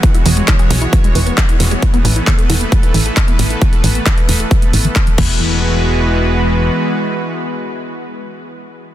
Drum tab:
CC |----------------|----------------|--------------x-|----------------|
HH |xxoxxxoxxxoxxxox|xxoxxxoxxxoxxxox|xxoxxxoxxxoxxx--|----------------|
CP |----x-------x---|----x-------x---|----x-------x---|----------------|
BD |o---o---o---o---|o---o---o---o---|o---o---o---o-o-|----------------|

CC |----------------|
HH |----------------|
CP |----------------|
BD |----------------|